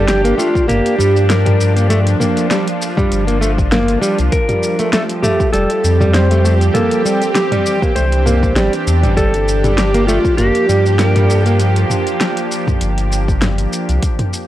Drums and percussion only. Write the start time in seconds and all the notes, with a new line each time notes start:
0.08 snare, closed hi-hat, shaker
0.25 closed hi-hat, shaker
0.40 shaker
0.55 kick, shaker
0.69 closed hi-hat, mid tom, shaker
0.86 closed hi-hat, shaker
1.00 shaker
1.17 shaker
1.30 snare, closed hi-hat, shaker
1.46 closed hi-hat, mid tom, shaker
1.61 shaker
1.77 closed hi-hat, shaker
1.90 closed hi-hat, shaker
2.07 closed hi-hat, shaker
2.21 mid tom, shaker
2.37 closed hi-hat, shaker
2.51 snare, closed hi-hat, shaker
2.68 closed hi-hat, shaker
2.82 shaker
2.98 kick, mid tom, shaker
3.12 closed hi-hat, shaker
3.28 closed hi-hat, shaker
3.42 shaker
3.58 kick, shaker
3.72 snare, closed hi-hat, mid tom, shaker
3.88 closed hi-hat, shaker
4.03 shaker
4.19 closed hi-hat, shaker
4.32 kick, closed hi-hat, shaker
4.49 closed hi-hat, mid tom, shaker
4.63 shaker
4.79 closed hi-hat, shaker
4.93 snare, closed hi-hat, shaker
5.09 closed hi-hat, shaker
5.23 mid tom, shaker
5.40 kick, shaker
5.53 closed hi-hat, shaker
5.70 closed hi-hat, shaker
5.84 shaker
6.00 mid tom, shaker
6.14 snare, closed hi-hat, shaker
6.31 closed hi-hat, shaker
6.45 shaker
6.61 closed hi-hat, shaker
6.75 closed hi-hat, mid tom, shaker
6.91 closed hi-hat, shaker
7.06 shaker
7.21 closed hi-hat, shaker
7.35 snare, closed hi-hat, shaker
7.52 closed hi-hat, mid tom, shaker
7.66 shaker
7.82 kick, shaker
7.96 closed hi-hat, shaker
8.12 closed hi-hat, shaker
8.26 mid tom, shaker
8.43 kick, shaker
8.56 snare, closed hi-hat, shaker
8.73 closed hi-hat, shaker
8.88 shaker
9.04 closed hi-hat, mid tom, shaker
9.17 kick, closed hi-hat, shaker
9.34 closed hi-hat, shaker
9.48 shaker
9.64 closed hi-hat, mid tom, shaker
9.78 snare, closed hi-hat, shaker
9.95 closed hi-hat, shaker
10.09 shaker
10.25 kick, shaker
10.38 closed hi-hat, mid tom, shaker
10.55 closed hi-hat, shaker
10.70 shaker
10.86 shaker
10.99 snare, closed hi-hat, shaker
11.16 closed hi-hat, mid tom, shaker
11.30 shaker
11.46 closed hi-hat, shaker
11.60 closed hi-hat, shaker
11.76 closed hi-hat, shaker
11.90 mid tom, shaker
12.07 closed hi-hat, shaker
12.21 snare, closed hi-hat, shaker
12.37 closed hi-hat, shaker
12.52 shaker
12.67 kick, mid tom, shaker
12.81 closed hi-hat, shaker
12.98 closed hi-hat, shaker
13.12 shaker
13.28 kick, shaker
13.42 snare, closed hi-hat, mid tom, shaker
13.58 closed hi-hat, shaker
13.73 shaker
13.89 closed hi-hat, shaker
14.03 kick, closed hi-hat, shaker
14.19 closed hi-hat, mid tom, shaker
14.33 shaker